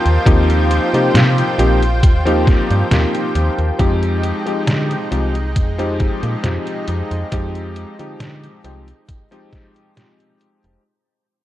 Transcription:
0.00 0.21 F3 medium
0.00 0.21 A#3 medium
0.00 0.22 C4 medium
0.00 0.22 D#4 medium
0.00 3.75 F4 medium
0.00 0.22 G4 medium
0.00 3.75 C5 medium
0.00 10.81 G5 medium
0.06 0.18 D#2 medium
0.06 closed hi-hat soft
0.26 0.80 D#2 loud
0.26 0.88 F3 loud
0.26 0.88 A#3 medium
0.26 0.88 C4 medium
0.26 0.88 D#4 medium
0.26 0.88 G4 loud
0.26 kick loud
0.26 closed hi-hat medium
0.50 closed hi-hat soft
0.71 closed hi-hat medium
0.93 1.10 C3 soft
0.93 1.53 F3 medium
0.93 1.54 A#3 medium
0.93 1.54 C4 medium
0.93 1.54 D#4 medium
0.93 1.54 G4 loud
0.93 closed hi-hat soft
1.14 1.43 C3 loud
1.14 snare loud
1.14 closed hi-hat medium
1.38 closed hi-hat soft
1.58 2.04 A#1 loud
1.58 1.80 F3 medium
1.58 1.80 A#3 medium
1.58 1.80 C4 medium
1.58 1.80 D#4 medium
1.58 1.81 G4 medium
1.58 closed hi-hat medium
1.82 closed hi-hat soft
2.03 2.56 D#2 medium
2.03 kick loud
2.03 closed hi-hat medium
2.25 2.86 F3 loud
2.25 2.86 A#3 medium
2.25 2.86 C4 medium
2.25 2.86 D#4 medium
2.25 2.86 G4 loud
2.25 closed hi-hat soft
2.47 kick loud
2.47 snare medium
2.47 closed hi-hat soft
2.70 2.83 G2 medium
2.70 closed hi-hat soft
2.90 3.05 D#2 medium
2.90 3.74 F3 medium
2.90 3.74 A#3 medium
2.90 3.74 C4 medium
2.90 3.75 D#4 medium
2.90 3.75 G4 loud
2.90 snare loud
2.90 closed hi-hat medium
3.15 closed hi-hat soft
3.35 3.50 D#2 loud
3.35 closed hi-hat medium
3.58 3.71 D#2 medium
3.58 closed hi-hat soft
3.79 4.33 F2 loud
3.79 4.41 F3 loud
3.79 4.41 G#3 medium
3.79 10.81 G#3 medium
3.79 4.41 C4 medium
3.79 10.81 D#4 medium
3.79 4.41 D#4 medium
3.79 4.41 G4 loud
3.79 kick loud
3.79 closed hi-hat medium
4.03 closed hi-hat soft
4.23 closed hi-hat medium
4.46 5.06 F3 medium
4.46 5.06 G#3 medium
4.46 5.07 C4 medium
4.46 5.07 D#4 medium
4.46 5.07 G4 loud
4.46 closed hi-hat soft
4.67 4.96 D3 loud
4.67 snare loud
4.67 closed hi-hat loud
4.91 closed hi-hat soft
5.11 5.57 C2 loud
5.11 5.33 F3 medium
5.11 5.33 G#3 medium
5.11 5.33 C4 medium
5.11 5.33 D#4 medium
5.11 5.34 G4 loud
5.11 closed hi-hat medium
5.35 closed hi-hat soft
5.56 6.09 F2 loud
5.56 kick loud
5.56 closed hi-hat medium
5.78 6.39 F3 loud
5.78 6.39 G#3 medium
5.78 6.39 C4 medium
5.78 6.39 D#4 medium
5.78 6.39 G4 loud
5.78 closed hi-hat soft
6.00 kick loud
6.00 closed hi-hat soft
6.23 6.36 A#2 medium
6.23 closed hi-hat soft
6.43 6.58 F2 medium
6.43 7.27 F3 medium
6.43 7.27 G#3 medium
6.43 7.27 C4 medium
6.43 7.27 D#4 medium
6.43 7.28 G4 medium
6.43 snare loud
6.43 closed hi-hat medium
6.67 closed hi-hat soft
6.88 7.02 F2 loud
6.88 closed hi-hat medium
7.11 7.24 F2 medium
7.11 closed hi-hat soft
7.31 7.85 F2 loud
7.31 7.94 F3 loud
7.31 7.94 G#3 medium
7.31 7.94 C4 medium
7.31 7.94 D#4 medium
7.31 7.94 G4 loud
7.31 kick loud
7.31 closed hi-hat medium
7.55 closed hi-hat soft
7.76 closed hi-hat medium
7.99 8.16 D3 soft
7.99 8.59 F3 medium
7.99 8.59 G#3 medium
7.99 8.60 C4 medium
7.99 8.60 D#4 medium
7.99 8.60 G4 medium
7.99 closed hi-hat soft
8.20 8.48 D3 loud
8.20 snare loud
8.20 closed hi-hat loud
8.44 closed hi-hat soft
8.64 8.93 C2 loud
8.64 8.86 F3 medium
8.64 8.86 G#3 medium
8.64 8.86 C4 medium
8.64 8.86 D#4 medium
8.64 8.87 G4 medium
8.64 closed hi-hat medium
8.88 closed hi-hat soft
9.09 kick loud
9.09 closed hi-hat loud
9.31 9.91 F3 loud
9.31 9.92 G#3 medium
9.31 9.92 C4 medium
9.31 9.92 D#4 medium
9.31 9.92 G4 loud
9.31 closed hi-hat soft
9.53 kick loud
9.53 snare medium
9.53 closed hi-hat soft
9.76 closed hi-hat soft
9.96 10.80 F3 medium
9.96 10.80 G#3 medium
9.96 10.80 C4 medium
9.96 10.80 D#4 medium
9.96 10.80 G4 medium
9.96 snare loud
9.96 closed hi-hat medium
10.20 closed hi-hat soft
10.41 closed hi-hat medium
10.64 10.77 F1 loud
10.64 closed hi-hat soft

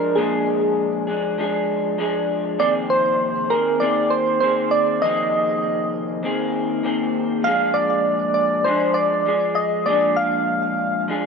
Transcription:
0.00 0.17 F3 medium
0.00 0.17 G#3 soft
0.00 0.17 D4 medium
0.00 0.18 G#4 medium
0.00 0.17 A#4 medium
0.15 1.08 A#2 medium
0.15 1.38 F3 medium
0.15 1.09 G#3 medium
0.15 1.07 D4 medium
0.15 1.03 G#4 medium
0.15 1.07 G#4 medium
1.07 1.38 G#3 soft
1.07 1.39 D4 soft
1.07 1.38 G#4 soft
1.38 1.98 F3 medium
1.38 1.98 G#3 medium
1.38 1.99 D4 medium
1.38 2.00 G#4 medium
1.98 2.59 F3 medium
1.98 2.59 G#3 medium
1.98 2.60 D4 medium
1.98 2.60 G#4 medium
2.59 3.50 F2 medium
2.59 3.50 C3 medium
2.59 3.50 D#3 medium
2.59 3.52 A#3 medium
2.59 3.50 C4 medium
2.59 3.49 G#4 medium
2.59 2.73 D5 medium
2.90 3.52 C5 medium
3.50 3.79 D#3 soft
3.50 3.80 A#3 soft
3.50 3.80 C4 soft
3.50 3.81 G#4 soft
3.50 3.82 A#4 medium
3.80 4.40 D#3 medium
3.80 4.42 A#3 medium
3.80 4.42 C4 medium
3.80 4.43 G#4 medium
3.80 4.12 D5 medium
4.10 4.39 C5 medium
4.40 5.01 D#3 medium
4.40 5.03 A#3 medium
4.40 5.03 C4 medium
4.40 5.05 G#4 medium
4.40 4.69 C5 medium
4.71 5.03 D5 medium
5.01 6.23 F2 medium
5.01 6.23 C3 medium
5.01 6.22 D#3 medium
5.01 6.24 A#3 medium
5.01 6.24 C4 medium
5.01 6.25 G#4 medium
5.01 5.89 D#5 medium
6.23 6.82 D#3 medium
6.23 6.84 A#3 medium
6.23 6.84 C4 medium
6.23 6.85 G#4 medium
6.83 7.44 D#3 medium
6.83 7.45 A#3 medium
6.83 7.45 C4 medium
6.83 7.46 G#4 medium
7.43 8.65 A#2 medium
7.43 8.65 F3 medium
7.43 8.66 G#3 medium
7.43 8.66 D4 medium
7.43 7.76 F5 loud
7.47 8.68 G#4 medium
7.74 8.33 D5 medium
8.34 8.66 D5 medium
8.64 9.25 F3 medium
8.64 9.26 G#3 medium
8.64 9.27 D4 medium
8.64 9.28 G#4 medium
8.64 8.96 C5 medium
8.94 9.58 D5 medium
9.26 9.87 F3 medium
9.26 9.88 G#3 medium
9.26 9.89 G#4 medium
9.55 9.87 D#5 medium
9.86 11.08 A#2 medium
9.86 11.08 F3 medium
9.86 11.09 G#3 medium
9.86 11.09 D4 medium
9.86 10.18 D5 medium
9.90 11.10 G#4 medium
10.16 11.04 F5 medium
11.08 11.26 F3 medium
11.08 11.26 G#3 medium
11.08 11.26 D4 medium
11.08 11.26 G#4 medium

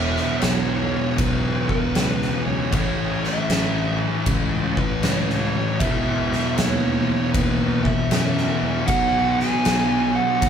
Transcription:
0.00 0.16 E1 loud
0.00 2.71 E2 medium
0.00 2.72 B2 loud
0.00 2.74 E3 loud
0.00 0.43 E5 loud
0.17 snare soft
0.40 0.94 B1 loud
0.40 1.17 C#5 loud
0.40 snare loud
0.40 crash medium
1.18 1.71 B1 medium
1.18 1.68 B4 medium
1.18 kick loud
1.18 crash medium
1.69 2.46 B4 medium
1.69 kick medium
1.95 2.30 C#2 loud
1.95 snare loud
1.95 crash medium
2.22 snare soft
2.46 2.65 C#2 medium
2.46 2.71 C#5 medium
2.72 3.25 A1 loud
2.72 5.79 A2 medium
2.72 5.80 E3 loud
2.72 5.80 A3 medium
2.72 3.25 C#5 medium
2.72 kick loud
2.72 crash medium
3.24 3.97 E5 loud
3.24 snare soft
3.49 4.01 A1 loud
3.49 snare loud
3.49 crash medium
4.26 4.79 C#2 loud
4.26 kick loud
4.26 crash medium
4.77 5.02 B4 medium
4.77 kick medium
5.03 5.56 C#2 loud
5.03 5.83 C#5 loud
5.03 snare loud
5.03 crash medium
5.30 snare soft
5.79 6.32 G#1 loud
5.79 8.87 E2 medium
5.79 8.86 B2 medium
5.79 6.59 E5 loud
5.79 kick loud
5.79 crash medium
5.84 8.89 E3 loud
6.32 snare soft
6.57 7.10 D#2 loud
6.57 7.33 C#5 medium
6.57 snare loud
6.57 crash medium
7.33 7.86 D#2 loud
7.33 7.86 B4 medium
7.33 kick loud
7.33 crash medium
7.83 8.60 E5 loud
7.83 kick medium
8.11 8.46 F#2 medium
8.11 snare loud
8.11 crash medium
8.38 snare soft
8.61 8.80 E2 medium
8.61 8.86 E5 loud
8.87 9.40 B1 loud
8.87 10.49 B2 medium
8.87 10.49 F#3 loud
8.87 9.35 F#5 loud
8.87 kick loud
8.87 crash medium
8.91 10.49 B3 loud
9.38 10.18 G#5 loud
9.38 snare soft
9.65 10.18 B1 loud
9.65 snare loud
9.65 crash medium
10.15 10.49 F#5 loud
10.42 10.49 D#2 medium
10.42 kick loud
10.42 crash medium

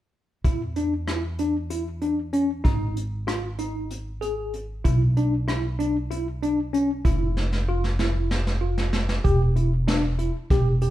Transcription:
0.44 2.61 E2 medium
0.44 0.61 E4 medium
0.44 kick medium
0.44 closed hi-hat medium
0.76 0.93 D4 medium
0.76 closed hi-hat soft
1.08 1.24 E4 medium
1.08 cross-stick medium
1.08 closed hi-hat medium
1.39 1.56 D4 medium
1.39 closed hi-hat soft
1.70 1.87 E4 medium
1.70 closed hi-hat medium
2.02 2.18 D4 medium
2.02 closed hi-hat soft
2.33 2.50 C#4 medium
2.33 closed hi-hat soft
2.64 4.81 G#1 medium
2.64 2.97 D#4 medium
2.64 kick medium
2.64 closed hi-hat medium
2.97 closed hi-hat soft
3.27 3.44 F4 medium
3.27 cross-stick medium
3.27 closed hi-hat medium
3.59 3.92 D#4 medium
3.59 closed hi-hat soft
3.91 closed hi-hat medium
4.21 4.54 G#4 medium
4.21 closed hi-hat soft
4.54 closed hi-hat soft
4.84 7.01 B1 medium
4.84 5.01 E4 medium
4.84 kick medium
4.84 closed hi-hat medium
5.17 5.33 D4 medium
5.17 closed hi-hat soft
5.48 5.64 E4 medium
5.48 cross-stick medium
5.48 closed hi-hat medium
5.79 5.95 D4 medium
5.79 closed hi-hat soft
6.11 6.27 E4 medium
6.11 closed hi-hat medium
6.43 6.59 D4 medium
6.43 closed hi-hat soft
6.73 6.90 C#4 medium
6.73 closed hi-hat soft
7.05 9.21 F1 medium
7.05 7.38 E4 medium
7.05 kick medium
7.05 closed hi-hat medium
7.37 snare soft
7.53 snare soft
7.69 7.85 F4 medium
7.84 snare soft
7.99 8.32 E4 medium
7.99 snare medium
8.31 snare medium
8.47 snare soft
8.61 8.94 F4 medium
8.78 snare medium
8.93 snare medium
9.09 snare medium
9.24 10.28 E1 medium
9.24 9.41 G4 medium
9.24 kick medium
9.24 closed hi-hat medium
9.56 9.73 E4 medium
9.56 closed hi-hat soft
9.88 10.04 D4 medium
9.88 snare medium
9.88 closed hi-hat medium
10.19 10.35 E4 medium
10.19 closed hi-hat soft
10.50 10.90 E1 medium
10.50 10.67 G4 medium
10.50 kick medium
10.50 snare soft
10.50 closed hi-hat medium
10.82 10.90 G4 medium
10.82 closed hi-hat soft

